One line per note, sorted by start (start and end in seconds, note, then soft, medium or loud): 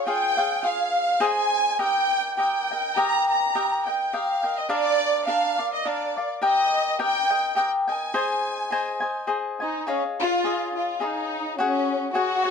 0.07 0.38 F4 medium
0.07 0.37 G#4 medium
0.07 0.37 C#5 medium
0.07 0.36 F5 medium
0.07 0.61 G5 loud
0.37 0.63 G#4 soft
0.37 0.63 C#5 soft
0.37 0.63 F5 medium
0.63 1.20 F4 soft
0.63 1.19 G#4 medium
0.63 1.21 C#5 medium
0.63 1.22 F5 medium
0.63 1.21 F5 medium
1.20 1.78 G#4 medium
1.20 1.79 C5 medium
1.20 1.79 D#5 medium
1.20 1.79 G#5 medium
1.20 1.81 G#5 loud
1.79 2.36 G4 medium
1.79 2.38 A#4 medium
1.79 2.38 D#5 medium
1.79 2.39 G5 medium
1.79 2.35 G5 loud
2.37 2.70 G4 medium
2.37 2.71 A#4 medium
2.37 2.70 D#5 soft
2.37 2.93 G5 medium
2.37 2.70 G5 medium
2.71 2.96 A#4 soft
2.71 2.96 D#5 soft
2.71 2.97 G5 soft
2.96 3.54 G4 medium
2.96 3.55 A#4 medium
2.96 3.54 D#5 medium
2.96 3.55 G5 medium
2.96 3.28 A#5 loud
3.29 3.83 A#5 medium
3.55 3.87 G4 medium
3.55 3.87 A#4 medium
3.55 3.86 D#5 medium
3.55 3.86 G5 medium
3.87 4.12 A#4 soft
3.87 4.12 D#5 soft
3.87 4.13 G5 medium
3.87 4.13 G5 soft
4.13 4.45 G4 soft
4.13 4.43 A#4 soft
4.13 4.43 D#5 soft
4.13 4.58 F5 medium
4.13 4.42 G5 medium
4.43 4.68 A#4 soft
4.43 4.69 D#5 soft
4.43 4.69 G5 soft
4.57 4.71 D#5 medium
4.69 5.26 D4 medium
4.69 5.28 A#4 medium
4.69 5.27 D5 medium
4.69 5.24 D5 loud
4.69 5.27 F5 medium
5.27 5.59 D4 medium
5.27 5.58 A#4 medium
5.27 5.57 D5 medium
5.27 5.58 F5 medium
5.27 5.72 F5 medium
5.58 5.84 A#4 soft
5.58 5.85 D5 soft
5.58 5.85 F5 soft
5.74 5.85 D#5 medium
5.85 6.16 D4 medium
5.85 6.16 A#4 medium
5.85 6.16 D5 soft
5.85 6.30 D5 medium
5.85 6.16 F5 medium
6.17 6.40 A#4 soft
6.17 6.42 D5 soft
6.17 6.42 F5 soft
6.42 6.98 G4 medium
6.42 6.98 A#4 medium
6.42 6.99 D#5 medium
6.42 6.96 D#5 medium
6.42 6.98 G5 medium
6.99 7.29 G4 medium
6.99 7.30 A#4 medium
6.99 7.29 D#5 medium
6.99 7.29 G5 medium
6.99 7.55 G5 loud
7.30 7.56 A#4 soft
7.30 7.55 D#5 soft
7.30 7.56 G5 soft
7.55 7.86 G4 soft
7.55 7.87 A#4 soft
7.55 7.87 D#5 medium
7.55 7.70 G5 medium
7.55 7.86 G5 medium
7.87 8.14 A#4 soft
7.87 8.13 D#5 soft
7.87 8.13 G5 soft
7.87 9.24 G#5 medium
8.14 8.70 G#4 medium
8.14 8.70 C5 medium
8.14 8.72 D#5 medium
8.14 8.72 G#5 medium
8.71 9.01 G#4 medium
8.71 9.01 C5 medium
8.71 9.01 D#5 medium
8.71 8.99 G#5 medium
9.00 9.26 C5 soft
9.00 9.26 D#5 soft
9.00 9.27 G#5 medium
9.27 9.59 G#4 soft
9.27 9.59 C5 medium
9.27 9.60 D#5 medium
9.27 9.59 G#5 medium
9.60 9.85 D#4 medium
9.60 9.87 C5 soft
9.60 9.87 D#5 soft
9.60 9.86 G#5 soft
9.87 10.02 C#4 medium
9.87 10.44 G#4 medium
9.87 10.44 C#5 medium
9.87 10.45 D#5 medium
9.87 10.44 F5 medium
10.20 10.72 F4 medium
10.44 11.00 G#4 soft
10.44 11.01 C#5 medium
10.44 11.00 D#5 medium
10.44 11.00 F5 medium
10.77 11.00 F4 medium
11.00 11.59 D#4 medium
11.00 11.58 G#4 soft
11.00 11.58 C#5 soft
11.00 11.58 D#5 soft
11.00 11.58 F5 soft
11.58 12.11 C#4 medium
11.58 12.13 F#4 medium
11.58 12.14 G#4 medium
11.58 12.14 C#5 medium
11.58 12.14 F#5 medium
12.14 12.45 F#4 soft
12.14 12.51 F#4 loud
12.14 12.44 G#4 medium
12.14 12.44 C#5 medium
12.14 12.43 F#5 medium
12.44 12.51 G#4 soft
12.44 12.51 C#5 soft
12.44 12.51 F#5 soft